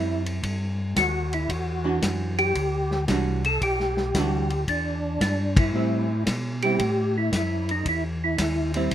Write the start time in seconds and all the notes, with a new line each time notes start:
Already playing: F#2 C4 E4
0.26 ride
0.43 G2, kick, ride
0.96 D#2 F#4, kick, snare, hi-hat pedal, ride
1.33 E4, ride
1.49 E2 F#4, kick, ride
1.84 E3 D4 F#4
2.02 F#2, kick, snare, hi-hat pedal, ride
2.38 G4, ride
2.55 D2, kick, ride
2.91 snare
3.08 C2 E3 G3 D4 F#4, kick, snare, hi-hat pedal, ride
3.44 A4, ride
3.61 B1 G4, kick, ride
3.80 snare
3.97 snare
4.14 D2 E3 G3 D4 F#4, kick, snare, hi-hat pedal, ride
4.50 ride
4.67 E2 D4, kick, ride
5.21 G2 D4, kick, snare, hi-hat pedal, ride
5.57 E4, kick, ride
5.73 A2 G3 C4 E4
6.26 B2, kick, snare, hi-hat pedal, ride
6.62 G3 C4 E4 G4, ride
6.79 A2, kick, ride
7.18 E4
7.32 F#2 E4, kick, snare, hi-hat pedal, ride
7.69 D#4, ride
7.85 E2 E4, kick, ride
8.24 E4
8.38 D#2, kick, snare, hi-hat pedal, ride
8.74 G3 C4 E4, ride
8.91 E2, kick, ride